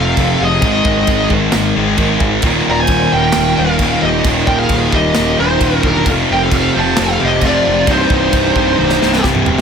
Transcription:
Already playing: picked electric bass F1, distorted electric guitar F2 C3 F3, lead electric guitar A4 F5
0.17 picked electric bass F1, distorted electric guitar F2 C3 F3, kick, crash
0.41 picked electric bass F1, lead electric guitar G#4 D#5
0.62 picked electric bass G#1, distorted electric guitar G#2 D#3 G#3, kick, crash
0.85 picked electric bass G#1, kick
1.07 picked electric bass G#1, kick, crash
1.30 picked electric bass G#1, distorted electric guitar D#3 G#3, kick
1.35 distorted electric guitar G#2
1.52 picked electric bass G#1, snare, crash
1.76 picked electric bass G#1, distorted electric guitar G#2 D#3 G#3
1.96 picked electric bass G#1, distorted electric guitar G#2 D#3 G#3, kick, crash
2.20 picked electric bass G#1, kick
2.42 picked electric bass D#1, distorted electric guitar D#2 A#2, kick, crash
2.47 distorted electric guitar D#3
2.69 picked electric bass D#1, lead electric guitar D5 A#5
2.80 lead electric guitar C5 G#5
2.87 picked electric bass D#1, kick, crash
3.11 picked electric bass D#1, distorted electric guitar D#2 A#2 D#3, lead electric guitar G5
3.17 lead electric guitar A#4
3.32 picked electric bass D#1, snare, crash
3.57 picked electric bass D#1, distorted electric guitar D#2 A#2 D#3, lead electric guitar A#4 F5
3.79 picked electric bass D#1, distorted electric guitar D#2 A#2 D#3, kick, crash
4.03 picked electric bass D#1, lead electric guitar G4 D#5
4.24 picked electric bass D#1, distorted electric guitar D#2 A#2 D#3, kick, crash
4.29 distorted electric guitar D#3
4.47 picked electric bass D#1, lead electric guitar A#4 G5, kick
4.59 lead electric guitar G#4 F5
4.69 picked electric bass D#1, kick, crash
4.92 picked electric bass D#1, distorted electric guitar A#2 D#3, lead electric guitar G4 D#5, kick
4.97 distorted electric guitar D#2
5.15 picked electric bass D#1, snare, crash
5.39 picked electric bass D#1, distorted electric guitar D#2 A#2 D#3, lead electric guitar D#4 C5
5.61 picked electric bass D#1, distorted electric guitar D#2 A#2 D#3, kick, crash
5.83 picked electric bass E1, lead electric guitar D4, kick
5.87 lead electric guitar A#4
6.06 picked electric bass F1, distorted electric guitar F2 C3 F3, kick, crash
6.10 distorted electric guitar F3
6.31 picked electric bass F1, lead electric guitar A#4 G5
6.43 lead electric guitar A4 F5
6.51 picked electric bass F1, lead electric guitar A4 F5, kick, crash
6.74 picked electric bass F1, distorted electric guitar C3 F3, lead electric guitar C5
6.79 distorted electric guitar F2, lead electric guitar A5
6.97 picked electric bass F1, lead electric guitar A4, snare, crash
7.04 lead electric guitar F5
7.20 picked electric bass F1, distorted electric guitar F2 C3 F3, lead electric guitar G4
7.26 lead electric guitar D#5
7.41 picked electric bass F1, distorted electric guitar F2 C3, lead electric guitar F4, kick, crash
7.46 distorted electric guitar F3, lead electric guitar D5
7.67 picked electric bass F1
7.87 picked electric bass C1, distorted electric guitar C2 G2 C3, lead electric guitar D#4, kick, crash
7.91 distorted electric guitar C3, lead electric guitar C5
8.10 picked electric bass C1, kick
8.33 picked electric bass C1, kick, crash
8.56 picked electric bass C1, distorted electric guitar G2 C3, kick
8.60 distorted electric guitar C2
8.78 picked electric bass C1, high tom
8.90 snare
9.02 picked electric bass C1, distorted electric guitar C2 G2 C3, snare
9.13 snare
9.24 picked electric bass C1, distorted electric guitar C2 G2 C3, kick, snare
9.35 mid tom
9.46 picked electric bass D1, floor tom

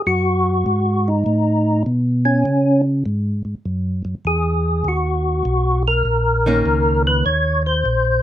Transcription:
0.07 tonewheel organ F#2 F#4
0.66 tonewheel organ G#2
1.08 tonewheel organ D#4
1.26 tonewheel organ A2
1.86 tonewheel organ B2
2.25 tonewheel organ C#4
2.45 tonewheel organ C#3
3.06 tonewheel organ G#2
3.45 tonewheel organ G#2
3.65 tonewheel organ F#2
4.05 tonewheel organ F#2
4.25 tonewheel organ E2 G#4
4.84 tonewheel organ D#2 F#4
5.45 tonewheel organ B1
5.88 tonewheel organ A#4
6.05 tonewheel organ A#1
6.46 hollow-body jazz guitar D#3 A#3 C#4
6.66 tonewheel organ C#2
7.07 tonewheel organ B4
7.26 tonewheel organ D#2 C#5
7.66 tonewheel organ C5
7.85 tonewheel organ A#1

